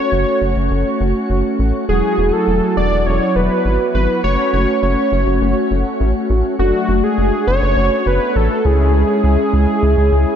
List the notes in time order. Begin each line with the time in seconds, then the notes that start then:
Already playing: A3 C#4 F#4 C#5
0.12 F#1
0.42 F#1
0.56 F#1
0.71 F#1
1.01 F#1
1.30 F#1
1.59 A1
1.89 E1 F#3 E4 F#4 G#4
2.18 E1
2.33 A4
2.48 E1
2.77 E1 D5
2.92 E1
3.06 E1 C#5
3.36 E1 B4
3.65 G#1
3.95 G#1 B4
4.24 F#1 A3 C#4 F#4 C#5
4.53 F#1 C#5
4.83 F#1 C#5
5.12 F#1
5.27 F#1
5.42 F#1
5.71 F#1
6.00 A1
6.30 A1
6.59 F#1 A3 D4 F#4
6.89 F#1
7.04 G#4
7.18 F#1
7.47 F#1 C#5
7.62 F#1
7.77 F#1
8.06 F#1 B4
8.36 A1 A4
8.65 C#2 G#3 C#4 E4 G#4
9.24 C#2
9.53 C#2
9.83 C#2
9.98 C#2
10.12 C#2